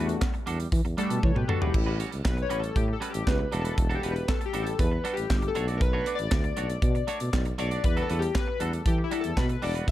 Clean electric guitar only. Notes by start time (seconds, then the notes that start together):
Already playing: G3
0.08 muted clean electric guitar stroke
0.21 muted clean electric guitar stroke
0.34 muted clean electric guitar stroke
0.46 G3 D4 F#4 A4
0.59 muted clean electric guitar stroke
0.85 muted clean electric guitar stroke
0.97 G3 D4 F#4 A4
1.10 muted clean electric guitar stroke
1.23 muted clean electric guitar stroke
1.36 muted clean electric guitar stroke
1.48 G3 D4 F#4 A4
1.61 G3 D4 F#4 B4
1.74 muted clean electric guitar stroke
1.86 G3 C#4 F#4 B4
1.99 G3 C#4 F#4 C#5
2.12 muted clean electric guitar stroke
2.24 muted clean electric guitar stroke
2.37 muted clean electric guitar stroke
2.49 G3 C#4 F#4 B4
2.63 muted clean electric guitar stroke
2.88 muted clean electric guitar stroke
3.00 G3 C#4 F#4 B4
3.13 muted clean electric guitar stroke
3.26 muted clean electric guitar stroke
3.39 muted clean electric guitar stroke
3.52 G3 D4 F#4 A4
3.64 G3 D4 F#4 B4
3.77 muted clean electric guitar stroke
3.89 G3 D4 F#4 A4
4.02 G3 D4 F#4 B4
4.15 muted clean electric guitar stroke
4.28 muted clean electric guitar stroke
4.41 muted clean electric guitar stroke
4.53 G3 D4 F#4 A4
4.66 muted clean electric guitar stroke
4.91 muted clean electric guitar stroke
5.04 G3 D4 F#4 A4
5.17 muted clean electric guitar stroke
5.30 muted clean electric guitar stroke
5.42 muted clean electric guitar stroke
5.55 A3 D4 F#4 C#5
5.68 A3 D4 F#4 D5
5.81 muted clean electric guitar stroke
5.93 A3 D4 F#4 C#5
6.06 A3 D4 F#4 D5
6.19 muted clean electric guitar stroke
6.31 muted clean electric guitar stroke
6.44 muted clean electric guitar stroke
6.57 A3 D4 F#4 C#5
6.70 muted clean electric guitar stroke
6.95 muted clean electric guitar stroke
7.07 A3 D4 F#4 C#5
7.20 muted clean electric guitar stroke
7.33 muted clean electric guitar stroke
7.46 muted clean electric guitar stroke
7.58 A3 D4 F#4 C#5
7.71 A3 D4 F#4 D5
7.97 G3 D4 F#4 A4
8.09 G3 D4 F#4 B4
8.22 muted clean electric guitar stroke
8.35 muted clean electric guitar stroke
8.47 muted clean electric guitar stroke
8.60 G3 D4 F#4 A4
8.73 muted clean electric guitar stroke
8.98 muted clean electric guitar stroke
9.11 G3 D4 F#4 A4
9.24 muted clean electric guitar stroke
9.37 muted clean electric guitar stroke
9.49 muted clean electric guitar stroke
9.62 G3 D4 F#4 A4
9.75 G3 D4 F#4 B4